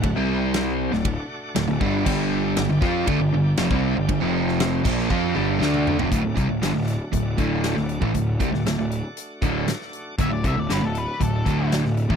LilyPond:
<<
  \new Staff \with { instrumentName = "Lead electric guitar" } { \time 4/4 \key d \mixolydian \tempo 4 = 118 r1 | r1 | r1 | r1 |
r1 | e''16 d''16 e''16 d''16 b'16 a'16 b'8 a'4 r4 | }
  \new Staff \with { instrumentName = "Tonewheel organ" } { \time 4/4 \key d \mixolydian <d' fis' a' fis''>16 <c' g' c''>4. <a d' fis' d''>2~ <a d' fis' d''>16 | <d' g' d''>1~ | <d' g' d''>16 <c' f' c''>4~ <c' f' c''>16 <d' g' d''>2~ <d' g' d''>8 | <a d' fis' d''>1~ |
<a d' fis' d''>1 | <a d' fis' d''>1 | }
  \new Staff \with { instrumentName = "Overdriven electric guitar" } { \clef bass \time 4/4 \key d \mixolydian <d, a,>16 <c g c'>4. <d, a,>8 r8. <d, a,>16 <d, a,>16 <g, d g>8 | <g, d g>4 <g, d>16 <g, d>16 <f c' f'>8 <d a>16 <g, d>16 <g, d>8 <f, c>16 <c g c'>8 <g, d>16 | <g, d>16 <f, c f>4~ <f, c f>16 <bes, f bes>8 <f c' f'>8 <g, d g>8 <d a d'>8. <f, c>16 | <d, a,>16 <d, a,>16 <c g>16 <d, a,>16 <g, d>16 <d, a,>8 r16 <d, a,>8 <d, a, d>8. <d, a,>8 <a, e>16 |
<d, a,>8 <c g>16 <d, a,>16 <d, a,>16 <d, a,>8 r8. <d, a, d>8 r4 | <d, a,>16 <d, a,>16 <c g>16 <d, a,>16 <g, d>16 <d, a,>8 r16 <d, a,>8 <d, a, d>8. <d, a,>8 <a, e>16 | }
  \new Staff \with { instrumentName = "Overdriven electric guitar" } { \clef bass \time 4/4 \key d \mixolydian <d, a,>16 <c g c'>4. <d, a,>8 r8. <d, a,>16 <d, a,>16 <g, d g>8 | <g, d g>4 <g, d>16 <g, d>16 <f c' f'>8 <d a>16 <g, d>16 <g, d>8 <f, c>16 <c g c'>8 <g, d>16 | <g, d>16 <f, c f>4~ <f, c f>16 <bes, f bes>8 <f c' f'>8 <g, d g>8 <d a d'>8. <f, c>16 | <d, a,>16 <d, a,>16 <c g>16 <d, a,>16 <g, d>16 <d, a,>8 r16 <d, a,>8 <d, a, d>8. <d, a,>8 <a, e>16 |
<d, a,>8 <c g>16 <d, a,>16 <d, a,>16 <d, a,>8 r8. <d, a, d>8 r4 | <d, a,>16 <d, a,>16 <c g>16 <d, a,>16 <g, d>16 <d, a,>8 r16 <d, a,>8 <d, a, d>8. <d, a,>8 <a, e>16 | }
  \new Staff \with { instrumentName = "Picked electric bass" } { \clef bass \time 4/4 \key d \mixolydian d,,16 c,4. d,,8 r8. d,,16 d,,16 g,,8 | g,,4 g,,16 g,,16 f,8 d,16 g,,16 g,,8 f,,16 c,8 g,,16 | g,,16 f,,4~ f,,16 bes,,8 f,8 g,,8 d,8. f,,16 | d,,16 d,,16 c,16 d,,16 g,,16 d,,8 r16 d,,8 d,,8. d,,8 a,,16 |
d,,8 c,16 d,,16 d,,16 d,,8 r8. d,,8 r4 | d,,16 d,,16 c,16 d,,16 g,,16 d,,8 r16 d,,8 d,,8. d,,8 a,,16 | }
  \new DrumStaff \with { instrumentName = "Drums" } \drummode { \time 4/4 <bd rb>4 <rb sn>8. sn16 <bd rb>4 <rb sn>8 bd8 | <cymc bd>4 <rb sn>8 <bd sn>8 <bd rb>4 <rb sn>16 bd8. | <bd rb>8. sn16 <rb sn>8 <cymc bd>16 sn16 bd4 sn16 tommh16 toml16 tomfh16 | <hh bd>8 <hh bd>8 <hh sn>8 hh8 <hh bd>8 <hh bd>8 <hh sn>16 sn16 hh16 bd16 |
<hh bd>8 <hh bd>16 sn16 <hh sn>8 hh8 hh8 <hh bd>8 <hh sn>16 sn16 hh8 | <hh bd>8 <hh bd>8 <hh sn>8 hh8 <hh bd>8 <hh bd>8 <hh sn>16 sn16 hh16 bd16 | }
>>